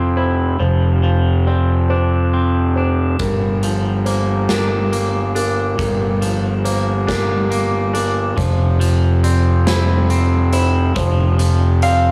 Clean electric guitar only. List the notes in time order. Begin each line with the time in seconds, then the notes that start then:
Already playing: F3 C4 E4
0.17 E4
0.60 F3
1.03 F3
1.47 C4
1.90 D4
2.34 C4
2.77 D4
3.21 G2
3.63 F3
4.06 A#3
4.49 D4
4.92 A#3
5.35 D4
5.78 G2
6.22 F3
6.65 A#3
7.07 D4
7.51 A#3
7.94 D4
8.37 F3
8.80 F3
9.24 C4
9.67 E4
10.10 C4
10.53 E4
10.95 F3
11.39 F3
11.83 C4